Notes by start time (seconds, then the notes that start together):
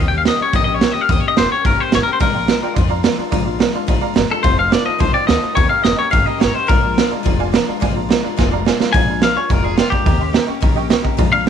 Already playing: D#3 A#3
0.00 D#2 C#4 G4
0.08 G4 G5
0.13 A#3 C#4
0.18 F5
0.25 D#3 A#3 C#4 G4 D#5, snare, open hi-hat
0.39 A#3 C#4 G4 C#5, muted upright bass stroke
0.53 A#1 D#3 A#3 C#4 G4 D#5, kick, open hi-hat
0.64 G4 D#5
0.69 A#3 C#4
0.74 C#5
0.81 D#3 A#3 C#4 G4, snare, open hi-hat
0.92 G4 D#5, muted upright bass stroke
0.97 A#3 C#4
1.01 F5
1.09 D#2 D#3 A#3 C#4 G4 D#5, kick, open hi-hat
1.20 G4 C#5, muted upright bass stroke
1.25 A#3 C#4 D#5
1.36 F1 D#3 A#3 C#4 G4 C5, snare, open hi-hat
1.50 A#3 C#4 G4 C#5, muted upright bass stroke
1.65 G1 D#3 A#3 C#4 G4 A#4, kick, open hi-hat
1.77 A#3 C#4 G4 C5, muted upright bass stroke
1.92 G#1 D#3 A#3 C#4 G4 C#5, snare, open hi-hat
2.03 G4 A#4
2.08 A#3 C#4, muted upright bass stroke
2.13 C5
2.20 A#1 A#2 F3 G#3 D4 F4 A#4 D5 F5 A#5, kick, open hi-hat
2.34 G#3 D4 F4 D5 F5 G5
2.47 F3 G#3 D4 D5 F5 A#5, snare, open hi-hat
2.52 F4
2.62 G#3 D4 F4 D5 F5 G5, muted upright bass stroke
2.74 F2 A#2 F3 G#3 D5 F5 C6, kick, open hi-hat
2.78 D4 F4
2.89 G#3 D4 F4 D5 F5 A#5
3.03 F3 G#3 D4 F4 D5 F5 A#5, snare, open hi-hat
3.17 G#3 D4 F4 D5 F5 A#5, muted upright bass stroke
3.31 A#1 A#2 F3 G#3 D4 F4 D5 F5 A#5, kick, open hi-hat
3.45 G#3 D4 F4 D5 F5 A#5
3.59 F3 G#3 D4 F4 D5 F5 A#5, snare, open hi-hat
3.73 G#3 D4 F4 D5 F5 C6, muted upright bass stroke
3.87 G#1 A#2 F3 G#3 D4 F4 D5 F5 A#5, kick, open hi-hat
4.01 G#3 D4 F4 D5 F5 A#5, muted upright bass stroke
4.14 G1 F3 G#3 D4 F4 D5 F5 A#5, snare, open hi-hat
4.29 G#3 D4 F4 A4 D5 F5 A#5, muted upright bass stroke
4.42 F1 F2 C3 D#3 A3 D#4 F4 C5 F5 A5, kick, open hi-hat
4.57 D#3 A3 D#4 F4 C5 F5 A5
4.70 D#3 A3 D#4 C5 D5 F5 A5, snare, open hi-hat
4.74 F4
4.84 D#3 A3 D#4 F4 C5 D#5 F5 A5, muted upright bass stroke
4.98 C2 F2 C3 D#3 A3 D#4 F4 C5 F5 A5, kick, open hi-hat
5.13 D#3 A3 D#4 F4 C5 D5 F5 G5, muted upright bass stroke
5.26 D2 D#3 A3 D#4 C5 D#5 F5 A5, snare, open hi-hat
5.31 F4
5.41 D#3 A3 D#4 F4 C5 F5 A5
5.54 D#2 D#3 A#3 C#4 C#5 D#5 G5 A#5, kick, open hi-hat
5.58 G4
5.69 A#3 C#4 G4 D#5 F5 G5 A#5
5.82 F1 D#3 A#3 C#4 D#5 G5 A#5, snare, open hi-hat
5.86 G4
5.95 A#3 C#4 G4 C#5 D#5 G5 A#5
6.11 G1 D#3 A#3 C#4 G4 D#5 F5 G5 A#5, kick, open hi-hat
6.26 A#3 C#4 G4 D#5 G5 A#5, muted upright bass stroke
6.38 D#3 A#3 C#4 G4 C#5 D#5 G5 A#5, snare, open hi-hat
6.42 G#1
6.53 A#3 C#4 G4 C5 D#5 G5 C#6, muted upright bass stroke
6.67 A#1 A#2 F3 G#3 D4 F4 A#4 D5 F5 A#5, kick, open hi-hat
6.81 G#3 D4 F4 D5 F5 A#5
6.94 F3 G#3 D4 F4 D5 F5, snare, open hi-hat
6.99 A#5
7.09 G#3 D4 F4 D5 F5 A#5, muted upright bass stroke
7.23 F1 A#2 F3 G#3 D4 F4 D5 F5, kick, open hi-hat
7.27 A#5
7.38 G#3 D4 F4 D5 F5 G#5
7.52 F3 G#3 D4 F4 D5 F5 A#5, snare, open hi-hat
7.66 G#3 D4 F4 D5 F5 A#5, muted upright bass stroke
7.80 A#1 A#2 F3 G#3 D4 F4 D5 F5 G#5, kick, open hi-hat
7.94 G#3 D4 F4 D5 F5 A#5
8.09 F3 G#3 D4 F4 D5 F5 A#5, snare, open hi-hat
8.23 G#3 D4 F4 D5 F5 A#5, muted upright bass stroke
8.37 F1 A#2 F3 G#3 D4 F4 D5 F5 G#5, kick, snare
8.51 G#3 D4 F4 D5 F5 A#5
8.65 F3 G#3 D4 F4 D5 F5 G#5, snare
8.78 G#3 D4 F4 D5 F5 A#5, muted upright bass stroke, snare
8.92 A#1 A#2 F3 G#3 D4 F4 D5 F5 G#5 A#5, kick, open hi-hat
9.07 G#3 D4 F4 D5 F5 A#5
9.21 F3 G#3 D4 F4 D5 F5 A#5, snare, open hi-hat
9.35 G#3 D4 F4 C#5 D5 F5 G#5, muted upright bass stroke
9.49 F1 A#2 F3 G#3 D4 F4 A#4 D5 F5 G#5, kick, open hi-hat
9.62 G#3 D4 F4 G#4 D5 F5 A#5
9.76 F3 G#3 D4 F4 D5 F5 G5, snare, open hi-hat
9.90 D4 F4 G4 D5 F5 A#5, muted upright bass stroke, kick
9.95 G#3
10.06 D#2 D#3 A#3 C#4 G4 D#5 G5 A#5, kick, open hi-hat
10.19 A#3 C#4 G4 D#5 G5 C6
10.33 D#3 A#3 C#4 G4 D#5 G5 A#5, snare, open hi-hat
10.46 A#3 C#4 G4 D#5 G5 C#6, muted upright bass stroke
10.61 A#1 D#3 A#3 C#4 G4 D#5 G5 A#5, kick, open hi-hat
10.75 A#3 C#4 G4 D#5 G5 C#6
10.89 D#3 A#3 C#4 G4 D#5 G5 C#6, snare, open hi-hat
11.02 A#3 C#4 G4 D#5 G5 A#5, muted upright bass stroke, kick
11.17 A#1 A#2 F3 G#3 D4 F4 D5 F5 A#5, kick, open hi-hat
11.31 G#3 D4 F4 D5 F5 A#5
11.44 F3 G#3 D5